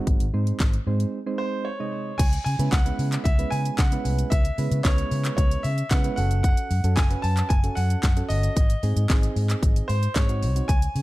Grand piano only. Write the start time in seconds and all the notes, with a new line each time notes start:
1.38 C5
1.65 C#5
2.18 G#5
2.44 G#5
2.71 F#5
3.24 E5
3.50 G#5
3.77 F#5
4.30 E5
4.84 C#5
5.37 C#5
5.63 E5
5.90 F#5
6.16 F#5
6.43 F#5
6.96 G#5
7.22 A5
7.49 G#5
7.75 F#5
8.29 D#5
9.88 C5
10.15 C#5
10.68 G#5